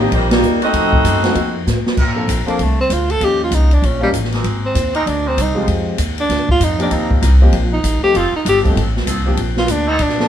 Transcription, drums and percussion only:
0.12 kick, ride
0.31 snare, ride
0.42 hi-hat pedal
0.62 ride
0.73 kick, ride
0.93 kick
1.04 kick, hi-hat pedal, ride
1.24 snare, ride
1.35 kick, ride
1.67 snare, hi-hat pedal
1.86 snare
1.97 kick, crash
2.28 kick, hi-hat pedal, ride
2.48 ride
2.59 kick, ride
2.90 kick, hi-hat pedal, ride
3.10 ride
3.21 kick, ride
3.51 kick, hi-hat pedal, ride
3.71 ride
3.83 kick, ride
4.13 kick, hi-hat pedal, ride
4.24 snare
4.32 snare, ride
4.44 kick, ride
4.75 kick, hi-hat pedal, ride
4.95 ride
5.06 kick, ride
5.37 kick, hi-hat pedal, ride
5.68 kick, ride
5.98 kick, hi-hat pedal, ride
6.18 ride
6.29 kick, snare, ride
6.49 kick
6.60 kick, hi-hat pedal, ride
6.80 ride
6.91 kick, ride
7.11 kick
7.22 hi-hat pedal, ride
7.53 kick, ride
7.84 kick, hi-hat pedal, ride
8.15 kick, ride
8.46 kick, hi-hat pedal, ride
8.65 kick, ride
8.76 kick, ride
8.97 snare
9.07 kick, hi-hat pedal, ride
9.37 kick, ride
9.57 snare
9.68 kick, hi-hat pedal, ride
9.99 kick, ride
10.09 snare
10.20 snare

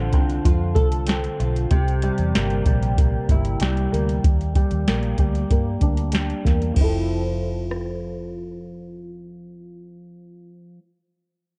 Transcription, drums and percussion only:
0.13 kick, closed hi-hat
0.30 closed hi-hat
0.45 kick, closed hi-hat
0.76 kick, closed hi-hat
0.92 closed hi-hat
1.07 snare, closed hi-hat
1.24 closed hi-hat
1.40 closed hi-hat
1.56 closed hi-hat
1.71 kick, closed hi-hat
1.88 closed hi-hat
2.02 closed hi-hat
2.18 closed hi-hat
2.35 snare, closed hi-hat
2.50 closed hi-hat
2.66 kick, closed hi-hat
2.83 closed hi-hat
2.98 kick, closed hi-hat
3.29 kick, closed hi-hat
3.45 closed hi-hat
3.60 snare, closed hi-hat
3.77 closed hi-hat
3.94 closed hi-hat
4.09 closed hi-hat
4.24 kick, closed hi-hat
4.41 closed hi-hat
4.55 kick, closed hi-hat
4.71 closed hi-hat
4.88 snare, closed hi-hat
5.03 closed hi-hat
5.18 kick, closed hi-hat
5.35 closed hi-hat
5.51 kick, closed hi-hat
5.81 kick, closed hi-hat
5.97 closed hi-hat
6.12 snare, closed hi-hat
6.30 closed hi-hat
6.45 kick, snare, closed hi-hat
6.62 closed hi-hat
6.76 kick, crash
7.71 cross-stick

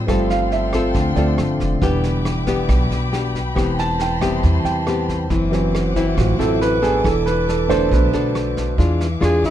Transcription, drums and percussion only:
0.08 kick, cross-stick, snare
0.30 snare
0.52 snare
0.73 kick, cross-stick, snare
0.94 kick, snare
1.16 snare
1.38 cross-stick, snare
1.60 kick, snare
1.82 kick, snare
2.04 snare
2.25 cross-stick, snare
2.47 kick, snare
2.69 kick, cross-stick, snare
2.91 snare
3.13 snare
3.35 kick, snare
3.56 kick, cross-stick, snare
3.79 snare
4.00 snare
4.21 kick, cross-stick, snare
4.43 kick, snare
4.65 snare
4.87 cross-stick, snare
5.09 kick, snare
5.30 kick, snare
5.53 snare
5.75 cross-stick, snare
5.96 kick, snare
6.18 kick, cross-stick, snare
6.40 snare
6.62 snare
6.83 kick, snare
7.05 kick, cross-stick, snare
7.27 snare
7.49 snare
7.70 kick, cross-stick, snare
7.92 kick, snare
8.13 snare
8.35 cross-stick, snare
8.57 kick, snare
8.78 kick, snare
9.00 snare
9.22 cross-stick, snare
9.43 kick, snare

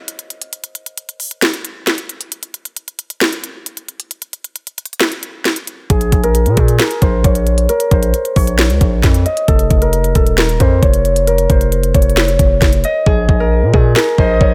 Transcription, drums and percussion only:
0.08 closed hi-hat
0.19 closed hi-hat
0.30 closed hi-hat
0.42 closed hi-hat
0.53 closed hi-hat
0.64 closed hi-hat
0.75 closed hi-hat
0.86 closed hi-hat
0.98 closed hi-hat
1.09 closed hi-hat
1.20 open hi-hat
1.31 closed hi-hat
1.42 snare, closed hi-hat
1.54 closed hi-hat
1.65 closed hi-hat
1.87 snare, closed hi-hat
1.98 closed hi-hat
2.09 closed hi-hat
2.21 closed hi-hat
2.32 closed hi-hat
2.43 closed hi-hat
2.54 closed hi-hat
2.65 closed hi-hat
2.77 closed hi-hat
2.88 closed hi-hat
2.99 closed hi-hat
3.10 closed hi-hat
3.21 snare, closed hi-hat
3.33 closed hi-hat
3.44 closed hi-hat
3.66 closed hi-hat
3.77 closed hi-hat
3.88 closed hi-hat
4.00 closed hi-hat
4.11 closed hi-hat
4.22 closed hi-hat
4.33 closed hi-hat
4.44 closed hi-hat
4.56 closed hi-hat
4.67 closed hi-hat
4.78 closed hi-hat, open hi-hat
4.86 closed hi-hat
4.93 closed hi-hat
5.00 snare, closed hi-hat
5.12 closed hi-hat
5.23 closed hi-hat
5.45 snare, closed hi-hat
5.56 closed hi-hat
5.67 closed hi-hat
5.90 kick, closed hi-hat
6.01 closed hi-hat
6.12 kick, closed hi-hat
6.24 closed hi-hat
6.35 closed hi-hat
6.46 closed hi-hat
6.57 kick, closed hi-hat
6.68 closed hi-hat
6.79 snare, closed hi-hat
6.91 closed hi-hat
7.02 kick, closed hi-hat
7.24 kick, closed hi-hat
7.35 closed hi-hat
7.47 closed hi-hat
7.58 closed hi-hat
7.69 closed hi-hat
7.80 closed hi-hat
7.91 kick, closed hi-hat
8.03 closed hi-hat
8.14 closed hi-hat
8.25 closed hi-hat
8.36 kick, open hi-hat
8.47 closed hi-hat
8.59 snare, closed hi-hat
8.70 closed hi-hat
8.81 kick, closed hi-hat
9.03 kick, snare, closed hi-hat
9.14 closed hi-hat
9.26 closed hi-hat
9.37 closed hi-hat
9.48 kick, closed hi-hat
9.59 closed hi-hat
9.71 kick, closed hi-hat
9.82 closed hi-hat
9.93 closed hi-hat
10.04 closed hi-hat
10.15 kick, closed hi-hat
10.27 closed hi-hat
10.38 snare, closed hi-hat
10.49 closed hi-hat
10.60 kick, closed hi-hat
10.83 kick, closed hi-hat
10.94 closed hi-hat
11.05 closed hi-hat
11.16 closed hi-hat
11.27 closed hi-hat
11.38 closed hi-hat
11.50 kick, closed hi-hat
11.61 closed hi-hat
11.72 closed hi-hat
11.83 closed hi-hat
11.94 kick, closed hi-hat, open hi-hat
12.02 closed hi-hat
12.10 closed hi-hat
12.17 snare, closed hi-hat
12.28 closed hi-hat
12.39 kick, closed hi-hat
12.62 kick, snare, closed hi-hat
12.73 closed hi-hat
12.84 closed hi-hat
13.06 kick
13.29 kick
13.74 kick
13.96 snare
14.18 kick
14.41 kick

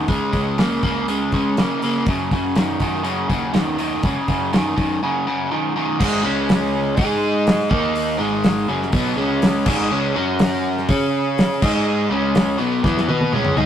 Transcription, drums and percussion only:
0.08 kick, open hi-hat
0.33 kick, open hi-hat
0.58 snare, open hi-hat
0.83 kick, open hi-hat
1.08 open hi-hat
1.32 kick, open hi-hat
1.57 snare, open hi-hat
1.82 open hi-hat
2.06 kick, open hi-hat
2.31 kick, open hi-hat
2.56 snare, open hi-hat
2.80 kick, open hi-hat
3.04 open hi-hat
3.30 kick, open hi-hat
3.54 snare, open hi-hat
3.79 open hi-hat
4.03 kick, open hi-hat
4.28 kick, open hi-hat
4.53 snare, open hi-hat
4.78 kick, open hi-hat
6.00 kick, crash
6.49 snare, open hi-hat
6.97 kick, open hi-hat
7.47 snare, open hi-hat
7.60 snare
7.71 kick
7.95 open hi-hat
8.44 snare, open hi-hat
8.82 snare
8.92 kick, open hi-hat
9.42 snare, open hi-hat
9.66 kick, crash
10.39 snare, open hi-hat
10.77 snare
10.89 kick, open hi-hat
11.38 snare, open hi-hat
11.62 kick, crash
12.35 snare, open hi-hat
12.84 kick, snare
12.97 snare
13.09 high tom
13.21 high tom
13.33 mid tom
13.45 mid tom
13.57 floor tom

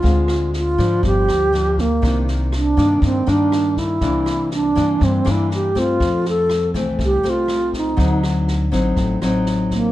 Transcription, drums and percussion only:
0.04 kick, snare
0.28 cross-stick, snare
0.53 snare
0.78 kick, snare
1.03 kick, snare
1.28 cross-stick, snare
1.54 snare
1.78 kick, snare
2.03 kick, cross-stick, snare
2.28 snare
2.52 cross-stick, snare
2.77 kick, snare
3.02 kick, snare
3.27 snare
3.52 cross-stick, snare
3.77 kick, snare
4.01 kick, snare
4.26 cross-stick, snare
4.51 snare
4.76 kick, snare
5.01 kick, snare
5.26 cross-stick, snare
5.51 snare
5.75 kick, snare
6.00 kick, cross-stick, snare
6.25 snare
6.49 cross-stick, snare
6.74 kick, snare
6.99 kick, snare
7.24 snare
7.48 cross-stick, snare
7.73 kick, snare
7.98 kick, snare
8.23 cross-stick, snare
8.48 snare
8.72 kick, snare
8.96 kick, snare
9.22 cross-stick, snare
9.46 snare
9.71 kick, snare

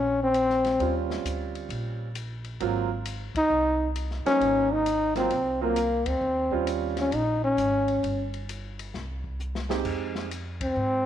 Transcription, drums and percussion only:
0.34 hi-hat pedal, ride
0.50 snare
0.65 snare, ride
0.80 ride
1.10 snare
1.25 hi-hat pedal, ride
1.55 ride
1.70 ride
2.15 hi-hat pedal, ride
2.44 ride
2.60 ride
3.05 hi-hat pedal, ride
3.35 kick, ride
3.96 hi-hat pedal, ride
4.11 snare
4.26 snare, ride
4.41 ride
4.86 hi-hat pedal, ride
5.15 snare, ride
5.30 ride
5.76 hi-hat pedal, ride
6.06 kick, ride
6.51 kick
6.67 hi-hat pedal, ride
6.97 snare, ride
7.12 ride
7.58 hi-hat pedal, ride
7.88 ride
8.04 ride
8.34 ride
8.49 hi-hat pedal, ride
8.79 ride
8.94 snare
9.24 kick
9.40 hi-hat pedal
9.55 snare
9.70 snare
9.85 kick, crash
10.15 snare
10.31 hi-hat pedal, ride
10.61 kick, ride

